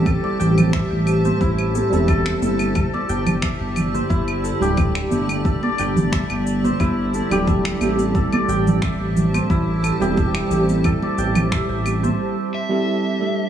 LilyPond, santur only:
\new Staff \with { instrumentName = "Santur" } { \time 4/4 \key a \minor \tempo 4 = 89 a'16 d''16 g''16 r16 e''16 r8 c''16 e'16 r16 a'16 a'16 a'16 r16 a'16 r16 | a'16 d''16 g''16 r16 e''16 r8 c''16 e'16 r16 a'16 g'16 e''16 r8. | a'16 d''16 g''16 r16 e''16 r8 c''16 e'16 r16 a'16 g'16 e''16 r8. | a'16 d''16 g''16 r16 e''16 r8 c''16 e'16 r16 a'16 g'16 e''16 r8. |
a'16 d''16 g''16 r16 e''16 r8 c''16 r2 | }